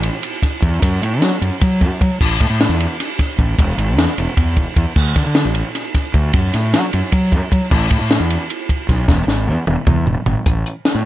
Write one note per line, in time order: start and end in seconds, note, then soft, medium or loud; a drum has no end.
0.03 ride medium
0.23 ride loud
0.42 kick medium
0.42 snare soft
0.42 ride medium
0.62 0.79 E2 loud
0.62 kick medium
0.62 ride medium
0.82 0.99 F#2 loud
0.82 kick loud
0.82 ride loud
1.02 1.22 A2 medium
1.02 ride medium
1.22 1.30 F#3 medium
1.22 snare loud
1.22 ride loud
1.41 1.49 F#2 medium
1.41 ride medium
1.61 1.83 F#3 medium
1.61 kick loud
1.61 ride loud
1.81 1.89 F#2 medium
1.81 kick medium
1.81 ride medium
2.01 2.09 F#3 medium
2.01 kick medium
2.01 ride medium
2.21 2.37 A1 loud
2.21 kick loud
2.21 crash loud
2.41 2.48 A2 medium
2.41 kick medium
2.41 ride medium
2.50 2.66 A2 medium
2.61 snare loud
2.61 ride loud
2.69 2.85 E2 medium
2.80 ride medium
3.00 snare soft
3.00 ride loud
3.19 kick medium
3.19 snare soft
3.19 ride medium
3.38 3.55 A1 loud
3.38 kick medium
3.38 ride medium
3.59 3.75 E1 loud
3.59 kick loud
3.59 ride loud
3.77 3.98 G#1 medium
3.77 ride medium
3.98 4.06 E2 medium
3.98 snare loud
3.98 ride loud
4.18 4.26 E1 medium
4.18 ride medium
4.37 4.57 E2 medium
4.37 kick loud
4.37 ride loud
4.57 4.65 E1 medium
4.57 kick medium
4.57 ride medium
4.76 4.84 E2 medium
4.76 kick medium
4.76 ride medium
4.96 5.12 D2 loud
4.96 kick loud
4.96 crash loud
5.16 5.24 D3 medium
5.16 kick medium
5.16 snare soft
5.16 ride medium
5.26 5.42 D3 medium
5.35 snare loud
5.35 ride medium
5.45 5.61 A1 medium
5.55 ride medium
5.75 snare soft
5.75 ride medium
5.95 kick medium
5.95 snare soft
5.95 ride medium
6.14 6.30 D2 medium
6.14 kick medium
6.14 ride medium
6.33 6.50 F#2 loud
6.33 kick loud
6.33 ride loud
6.54 6.75 A2 medium
6.54 snare soft
6.54 ride medium
6.73 6.81 F#3 medium
6.73 snare loud
6.73 ride loud
6.93 7.01 F#2 medium
6.93 ride medium
7.12 7.34 F#3 medium
7.12 kick loud
7.12 ride loud
7.32 7.40 F#2 medium
7.32 kick medium
7.32 ride medium
7.52 7.60 F#3 medium
7.52 kick medium
7.52 ride medium
7.71 7.88 A1 loud
7.71 kick loud
7.71 crash loud
7.91 7.99 A2 medium
7.91 kick medium
7.91 ride medium
8.01 8.17 A2 medium
8.11 snare loud
8.11 ride medium
8.20 8.36 E2 medium
8.30 ride medium
8.50 ride medium
8.69 kick medium
8.69 ride medium
8.89 9.05 B1 loud
8.89 kick medium
8.89 snare soft
8.89 ride medium
9.08 9.25 E1 loud
9.08 kick loud
9.08 snare medium
9.27 9.49 G#1 medium
9.27 snare medium
9.47 9.56 E2 medium
9.67 9.75 E1 medium
9.67 mid tom medium
9.87 10.07 E2 medium
9.87 kick loud
9.87 mid tom medium
10.06 10.14 E1 medium
10.06 floor tom medium
10.26 10.34 G#1 medium
10.26 floor tom loud
10.46 10.62 A1 medium
10.46 kick loud
10.46 closed hi-hat medium
10.66 closed hi-hat medium
10.85 snare loud
10.85 closed hi-hat medium
10.95 11.03 A2 medium